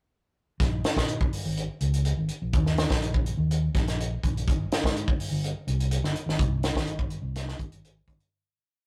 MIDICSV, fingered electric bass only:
0, 0, Header, 1, 3, 480
1, 0, Start_track
1, 0, Tempo, 482315
1, 603, Time_signature, 4, 2, 24, 8
1, 8822, End_track
2, 0, Start_track
2, 0, Title_t, "Fingered electric bass"
2, 0, Program_c, 0, 33
2, 595, Note_on_c, 0, 34, 80
2, 795, Note_off_c, 0, 34, 0
2, 961, Note_on_c, 0, 46, 67
2, 1257, Note_off_c, 0, 46, 0
2, 1449, Note_on_c, 0, 32, 85
2, 1647, Note_off_c, 0, 32, 0
2, 1799, Note_on_c, 0, 37, 73
2, 2100, Note_off_c, 0, 37, 0
2, 2163, Note_on_c, 0, 32, 73
2, 2263, Note_off_c, 0, 32, 0
2, 2407, Note_on_c, 0, 34, 76
2, 2506, Note_off_c, 0, 34, 0
2, 2520, Note_on_c, 0, 39, 81
2, 2822, Note_off_c, 0, 39, 0
2, 2892, Note_on_c, 0, 34, 72
2, 3286, Note_off_c, 0, 34, 0
2, 3358, Note_on_c, 0, 39, 73
2, 3657, Note_off_c, 0, 39, 0
2, 3733, Note_on_c, 0, 34, 82
2, 4125, Note_off_c, 0, 34, 0
2, 4212, Note_on_c, 0, 34, 78
2, 4453, Note_off_c, 0, 34, 0
2, 4453, Note_on_c, 0, 32, 88
2, 4649, Note_off_c, 0, 32, 0
2, 4813, Note_on_c, 0, 44, 73
2, 5105, Note_off_c, 0, 44, 0
2, 5285, Note_on_c, 0, 31, 87
2, 5484, Note_off_c, 0, 31, 0
2, 5647, Note_on_c, 0, 36, 76
2, 5943, Note_off_c, 0, 36, 0
2, 5996, Note_on_c, 0, 31, 72
2, 6098, Note_off_c, 0, 31, 0
2, 6232, Note_on_c, 0, 32, 78
2, 6335, Note_off_c, 0, 32, 0
2, 6360, Note_on_c, 0, 36, 93
2, 6658, Note_off_c, 0, 36, 0
2, 6719, Note_on_c, 0, 32, 78
2, 7113, Note_off_c, 0, 32, 0
2, 7184, Note_on_c, 0, 36, 82
2, 7483, Note_off_c, 0, 36, 0
2, 7558, Note_on_c, 0, 32, 80
2, 7950, Note_off_c, 0, 32, 0
2, 8034, Note_on_c, 0, 32, 85
2, 8137, Note_off_c, 0, 32, 0
2, 8822, End_track
3, 0, Start_track
3, 0, Title_t, "Muted fingered electric bass strokes"
3, 1325, Note_on_c, 9, 29, 29
3, 1424, Note_off_c, 9, 29, 0
3, 5160, Note_on_c, 9, 29, 32
3, 5260, Note_off_c, 9, 29, 0
3, 8822, End_track
0, 0, End_of_file